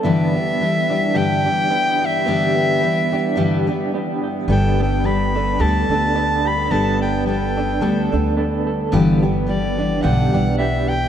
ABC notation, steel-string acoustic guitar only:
X:1
M:4/4
L:1/8
Q:"Swing" 1/4=108
K:Em
V:1 name="Steel-string acoustic guitar"
[G,,D,E,G,B,G] [E,G,B,G] [E,G,B,G] [E,G,B,G] [G,,D,E,G,B,G] [E,G,B,G]3 | [G,,D,E,G,B,G]2 [E,G,B,G] [E,G,B,G] [G,,D,E,G,B,G] [E,G,B,G]3 | [G,B,DA] [B,DA] [G,B,DA] [B,DA] [G,B,DA] [B,DA]3 | [G,B,DA]2 [G,B,DA] [B,DA] [G,B,DA] [B,DA]3 |
[G,,D,E,G,B,G] [E,G,B,G] [E,G,B,G] [E,G,B,G] [G,,D,E,G,B,G] [E,G,B,G]3 |]